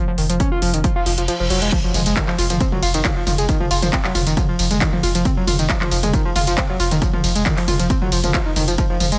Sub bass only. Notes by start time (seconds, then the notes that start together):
0.08 F1
0.18 F1
0.30 F1
0.52 F1
0.62 F1
0.74 F1
0.96 F1
1.06 F1
1.18 F1
1.40 F1
1.50 F1
1.62 F1
1.84 F1
1.94 F1
2.06 F1
2.28 F1
2.39 F1
2.50 F1
2.72 F1
2.83 F1
2.94 F1
3.16 F1
3.27 F1
3.38 F1
3.61 F1
3.71 F1
3.83 F1
4.05 F1
4.15 F1
4.27 F1
4.49 F1
4.59 F1
4.71 F1
4.93 F1
5.03 F1
5.15 F1
5.37 F1
5.47 F1
5.59 F1
5.81 F1
5.92 F1
6.03 F1
6.25 F1
6.36 F1
6.47 F1
6.69 F1
6.80 F1
6.91 F1
7.13 F1
7.24 F1
7.35 F1
7.57 F1
7.68 F1
7.80 F1
8.02 F1
8.12 F1
8.24 F1
8.46 F1
8.56 F1
8.68 F1
8.90 F1
9.00 F1
9.12 F1